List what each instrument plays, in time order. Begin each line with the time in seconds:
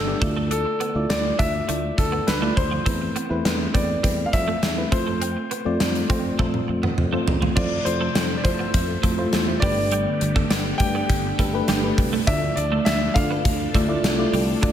Already playing: fretless electric bass G1, fm electric piano G2 B3 D4 G4 D5 E5, grand piano A4
0.07 fm electric piano B3 D4 G4 D5
0.21 fretless electric bass D2, fm electric piano D3 A3 E4 F4 D5, clean electric guitar A3, kick, closed hi-hat
0.36 clean electric guitar A3
0.51 clean electric guitar D4, grand piano A4, closed hi-hat
0.65 muted clean electric guitar stroke
0.80 clean electric guitar B3, closed hi-hat
0.95 fretless electric bass D2, fm electric piano A3 E4 F4 D5
1.10 fretless electric bass D2, grand piano D5, snare, closed hi-hat
1.39 fretless electric bass D2, fm electric piano A3 E4 F4 D5, clean electric guitar D4, grand piano E5, kick, closed hi-hat
1.67 fretless electric bass D2, fm electric piano A3 E4 F4 D5, clean electric guitar A3, closed hi-hat
1.98 fretless electric bass D2, grand piano A4, muted clean electric guitar stroke, kick, closed hi-hat
2.12 clean electric guitar B3
2.27 fretless electric bass D2, grand piano B4, snare, closed hi-hat
2.42 fm electric piano A3 E4 F4 D5, clean electric guitar A3
2.57 fretless electric bass D2, grand piano C5, muted clean electric guitar stroke, kick, closed hi-hat
2.71 clean electric guitar F3
2.85 fretless electric bass E2, fm electric piano E3 A3 C4 E4 B4, clean electric guitar A3, kick, closed hi-hat
3.01 muted clean electric guitar stroke
3.16 clean electric guitar B3, closed hi-hat
3.29 fretless electric bass E2, fm electric piano A3 C4 E4 B4
3.45 fretless electric bass E2, snare, closed hi-hat
3.73 fretless electric bass E2, fm electric piano A3 C4 E4 B4, clean electric guitar C4, grand piano D5, kick, closed hi-hat
4.03 fretless electric bass E2, clean electric guitar G3, fm electric piano A3 C4 E4 B4, kick, closed hi-hat
4.26 grand piano F5
4.33 fretless electric bass F2, grand piano E5, muted clean electric guitar stroke, kick, closed hi-hat
4.48 clean electric guitar A3
4.63 fretless electric bass E2, muted clean electric guitar stroke, snare, closed hi-hat
4.77 fm electric piano A3 C4 E4 B4
4.92 fretless electric bass F2, fm electric piano A3 C4 F4 C5, clean electric guitar A3, grand piano C5, kick, closed hi-hat
5.07 clean electric guitar A3
5.22 clean electric guitar C4, closed hi-hat
5.37 muted clean electric guitar stroke
5.51 clean electric guitar B3, closed hi-hat
5.65 fretless electric bass F2, fm electric piano A3 C4 F4 D5
5.80 fretless electric bass F2, snare, closed hi-hat
5.95 closed hi-hat
6.09 fretless electric bass F2, fm electric piano A3 C4 F4 C5, clean electric guitar C4, kick, closed hi-hat
6.39 fretless electric bass F2, fm electric piano A3 C4 F4 C5, clean electric guitar A3, kick, high tom
6.54 high tom
6.68 fretless electric bass F2, muted clean electric guitar stroke
6.83 clean electric guitar B3, mid tom
6.98 fretless electric bass F2, mid tom
7.12 fm electric piano A3 C4 F4 C5, clean electric guitar A3
7.27 fretless electric bass E2, muted clean electric guitar stroke, floor tom
7.42 clean electric guitar F3, floor tom
7.56 fretless electric bass F2, string machine C3 F3 A3 A4 E5, clean electric guitar F3, fm electric piano A3 E4 F4 C5, grand piano D5, kick, crash
7.85 fretless electric bass F2, grand piano C5, muted clean electric guitar stroke, closed hi-hat
8.01 clean electric guitar A3
8.15 fretless electric bass F2, clean electric guitar C4, snare, closed hi-hat
8.37 grand piano D5
8.44 fretless electric bass F3, fm electric piano A3 E4 F4 C5, grand piano C5, muted clean electric guitar stroke, kick, closed hi-hat
8.59 clean electric guitar B3
8.74 fretless electric bass F2, kick, closed hi-hat
9.03 fretless electric bass F2, clean electric guitar A3, fm electric piano A3 E4 F4 C5, kick, closed hi-hat
9.17 fm electric piano A3 E4 F4 C5
9.33 fretless electric bass E2, snare, closed hi-hat
9.47 fm electric piano A3 E4 F4 C5
9.60 fretless electric bass G1, fm electric piano G2 A3 D4 G4 B4, string machine D3 G3 B3 G4, clean electric guitar G3, grand piano D5, kick, open hi-hat
9.91 clean electric guitar G3, closed hi-hat
10.21 fretless electric bass G1, muted clean electric guitar stroke, closed hi-hat
10.36 clean electric guitar A3, kick
10.50 fretless electric bass G1, clean electric guitar D4, snare, closed hi-hat
10.78 fretless electric bass G2, fm electric piano A3 D4 G4 D5, grand piano G5, muted clean electric guitar stroke, kick, closed hi-hat
10.95 clean electric guitar B3
11.09 fretless electric bass G1, kick, closed hi-hat
11.38 fretless electric bass G1, fm electric piano A3 D4 G4 B4, clean electric guitar A3, kick, closed hi-hat
11.53 fm electric piano A3 D4 G4 B4
11.68 fretless electric bass G1, clean electric guitar G3, snare, closed hi-hat
11.83 fm electric piano A3 D4 G4 B4
11.98 fretless electric bass C2, muted clean electric guitar stroke, kick, open hi-hat
12.13 clean electric guitar A3
12.27 fretless electric bass D2, fm electric piano D3 A3 E4 F4 D5, string machine D3 F3 D4 A4, clean electric guitar D4, grand piano E5, kick, closed hi-hat
12.56 fretless electric bass D2, grand piano D5, muted clean electric guitar stroke, closed hi-hat
12.72 clean electric guitar A3
12.85 fretless electric bass D2, clean electric guitar D4, grand piano E5, snare, closed hi-hat
13.14 fretless electric bass D3, fm electric piano A3 D4 F4 D5, grand piano F5, muted clean electric guitar stroke, kick, closed hi-hat
13.31 clean electric guitar B3
13.45 fretless electric bass D2, kick, closed hi-hat
13.73 fretless electric bass D2, fm electric piano A3 E4 F4 D5, clean electric guitar A3, kick, closed hi-hat
13.88 fm electric piano A3 E4 F4 D5
14.03 fretless electric bass C2, snare, closed hi-hat
14.18 fm electric piano A3 E4 F4 D5
14.33 fretless electric bass C2, clean electric guitar G3, open hi-hat
14.62 fretless electric bass D2, fm electric piano D3 A3 D4 F4 D5, clean electric guitar D4, kick, closed hi-hat